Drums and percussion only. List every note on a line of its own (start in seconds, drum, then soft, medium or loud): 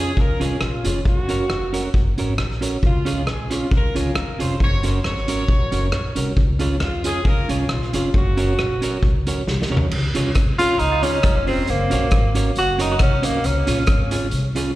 0.17 kick loud
0.41 closed hi-hat medium
0.61 cross-stick loud
0.85 closed hi-hat medium
1.05 kick loud
1.29 closed hi-hat medium
1.50 cross-stick loud
1.74 closed hi-hat medium
1.94 kick loud
2.18 closed hi-hat medium
2.38 cross-stick loud
2.62 closed hi-hat medium
2.83 kick medium
3.06 closed hi-hat medium
3.27 cross-stick medium
3.51 closed hi-hat medium
3.71 kick loud
3.96 closed hi-hat medium
4.15 cross-stick loud
4.40 closed hi-hat medium
4.60 kick loud
4.83 closed hi-hat medium
5.04 cross-stick medium
5.28 closed hi-hat medium
5.48 kick loud
5.72 closed hi-hat medium
5.92 cross-stick loud
6.16 closed hi-hat medium
6.37 kick loud
6.59 closed hi-hat medium
6.80 cross-stick loud
7.04 closed hi-hat medium
7.25 kick loud
7.49 closed hi-hat medium
7.69 cross-stick loud
7.93 closed hi-hat medium
8.14 kick loud
8.37 closed hi-hat medium
8.59 cross-stick loud
8.82 closed hi-hat medium
9.03 kick loud
9.27 closed hi-hat medium
9.47 snare medium
9.62 snare medium
9.77 floor tom medium
9.91 crash medium
10.15 closed hi-hat medium
10.35 kick loud
10.35 cross-stick loud
10.35 closed hi-hat medium
10.59 closed hi-hat loud
10.79 closed hi-hat medium
11.03 closed hi-hat medium
11.23 kick loud
11.23 cross-stick loud
11.23 closed hi-hat medium
11.47 open hi-hat medium
11.67 closed hi-hat medium
11.91 closed hi-hat medium
12.11 kick loud
12.11 cross-stick loud
12.11 closed hi-hat medium
12.35 closed hi-hat medium
12.56 closed hi-hat medium
12.79 closed hi-hat medium
12.99 kick loud
12.99 cross-stick loud
12.99 closed hi-hat medium
13.23 closed hi-hat loud
13.44 closed hi-hat medium
13.67 closed hi-hat medium
13.87 kick loud
13.87 cross-stick loud
13.87 closed hi-hat medium
14.11 closed hi-hat medium
14.31 closed hi-hat medium
14.56 closed hi-hat medium